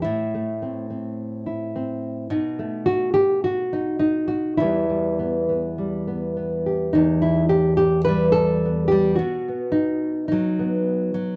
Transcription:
0.02 A2 E4
0.35 A3
0.62 C4
0.90 C4
1.46 E4
1.76 C4
2.30 B2 D#4
2.59 A3
2.86 F#4
3.14 G4
3.44 F#4
3.73 D#4
3.99 D#4
4.28 F#4
4.57 E2 E3 E4
4.62 G3 B3
4.90 G3
5.19 B3
5.49 B3
5.78 G3
6.08 B3
6.37 B3
6.66 G4
6.93 E2 D#4
7.22 E4
7.49 G4
7.77 G4
8.05 G3 B4
8.32 A4
8.65 B3
8.88 G3 G4
9.16 B2 F#4
9.48 B3
9.72 D#4
10.28 F#3 D#4
10.59 B3
11.14 F#3

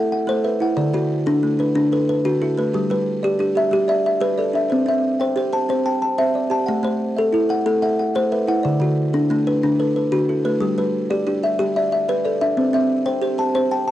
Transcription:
Already playing: A3 A4 E5 F#5
0.12 F#5
0.27 A3 A4 C5
0.44 B4 E5
0.60 E4 F#5
0.77 D3 D5
0.94 D3 F#4
1.26 D4 A4
1.43 A3
1.59 D4 B4
1.75 D3 D4
1.92 A4 B4
2.09 B4
2.25 D3 D4 F#4
2.42 E4 A4
2.58 A3 B4
2.74 G3 G4
2.90 G3 B4
3.23 G4 D5
3.39 D4 G4
3.55 G4 E5
3.71 G3 G4
3.88 D5 E5
4.06 E5
4.20 G3 G4 B4
4.38 A4 D5
4.53 D4 E5
4.70 C4 C5
4.86 C4 E5
5.20 C5 G5
5.36 G4 C5
5.53 C5 A5
5.69 C4 C5
5.86 G5 A5
6.02 A5
6.18 C4 C5 E5
6.35 D5
6.50 G4 A5
6.66 A3 F#5
6.83 A3 C5
7.16 A4 E5
7.33 E4 A4
7.49 A4 F#5
7.66 A3 A4
7.82 E5 F#5
7.99 F#5
8.15 A3 A4 C5
8.32 B4 E5
8.47 E4 F#5
8.63 D3 D5
8.80 D3 F#4
9.13 D4 A4
9.30 A3 D4
9.47 D4 B4
9.63 D3 D4
9.79 A4 B4
9.96 B4
10.12 D3 D4 F#4
10.29 E4 A4
10.45 A3 B4
10.61 G3 G4
10.78 G3 B4
11.10 G4 D5
11.27 D4 G4
11.43 G4 E5
11.59 G3 G4
11.76 D5 E5
11.92 E5
12.09 G3 G4 B4
12.25 A4 D5
12.42 D4 E5
12.57 C4 C5
12.73 C4 E5
13.06 C5 G5
13.22 G4 C5
13.38 C5 A5
13.55 C4 C5
13.71 G5 A5
13.87 A5

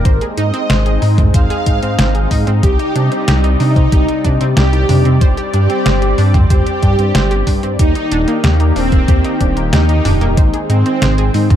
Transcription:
Already playing: A#4
0.05 G#1 G#3 C4 D#4 C5, kick, closed hi-hat
0.21 G#4, closed hi-hat
0.37 G#2 D#4 D#5, closed hi-hat
0.54 C4, closed hi-hat
0.70 G#1 C5, snare, closed hi-hat
0.86 G#4, closed hi-hat
1.02 G#2 D#4, open hi-hat
1.18 C4, kick, closed hi-hat, mid tom
1.34 G#1 C5 F5, kick, closed hi-hat
1.50 G#4, closed hi-hat
1.66 G#2 D#4, kick, closed hi-hat
1.83 G#2 C4, closed hi-hat
1.99 G#1 C5, snare, closed hi-hat
2.15 G#4, closed hi-hat
2.31 G#2 D#4, kick, open hi-hat
2.47 G#2 C4, closed hi-hat
2.63 C2 C3 G3 G4 D5, kick, closed hi-hat
2.79 D#4, closed hi-hat
2.95 C3 D4, closed hi-hat
3.12 C4, closed hi-hat
3.28 C2 G4, snare, closed hi-hat
3.44 D#4, closed hi-hat
3.60 C3 D4 D#4, open hi-hat
3.76 C4, kick, closed hi-hat
3.92 C2 G4, kick, closed hi-hat
4.08 D#4, closed hi-hat
4.24 C3 D4, kick, closed hi-hat
4.41 C3 C4, closed hi-hat
4.57 C2 G4, snare, closed hi-hat
4.73 D#4, closed hi-hat
4.89 C3 D4, mid tom, open hi-hat
5.05 C3 C4, closed hi-hat
5.21 G1 C4 C5, kick, closed hi-hat
5.37 G4, closed hi-hat
5.53 G2 D4 G4, closed hi-hat
5.70 C4, closed hi-hat
5.86 G1 C5, snare, closed hi-hat
6.02 G4, closed hi-hat
6.18 G2 D4, open hi-hat
6.34 C4, kick, closed hi-hat, mid tom
6.50 G1 G4 C5, kick, closed hi-hat
6.66 G4, closed hi-hat
6.83 G2 D4, kick, closed hi-hat
6.99 G2 C4, closed hi-hat
7.15 G1 C5, snare, closed hi-hat
7.31 G4, closed hi-hat
7.47 G2 D4, kick, open hi-hat
7.63 G2 C4, closed hi-hat
7.79 D#2 D#3 A#3 D#4 G4, kick, closed hi-hat
7.95 D#4, closed hi-hat
8.11 D#1 D4, closed hi-hat
8.28 A#3, closed hi-hat
8.44 D#2 G4, snare, closed hi-hat
8.60 D#4, closed hi-hat
8.76 D#1 C4 D4, open hi-hat
8.92 A#3, kick, closed hi-hat
9.08 D#2 G4, kick, closed hi-hat
9.25 D#4, closed hi-hat
9.41 D#1 D4, kick, closed hi-hat
9.57 D#1 A#3, closed hi-hat
9.73 D#2 D#4 G4, snare, closed hi-hat
9.89 D#4, closed hi-hat
10.05 D#1 D4, mid tom, open hi-hat
10.21 D#1 A#3, closed hi-hat
10.37 G#1 G#3 C4 C5, kick, closed hi-hat
10.54 G#4, closed hi-hat
10.69 G#2 C4 D#4, closed hi-hat
10.86 C4, closed hi-hat
11.02 G#1 C5, snare, closed hi-hat
11.18 G#4, closed hi-hat
11.34 G#2 D#4, open hi-hat
11.50 C4, kick, closed hi-hat, mid tom

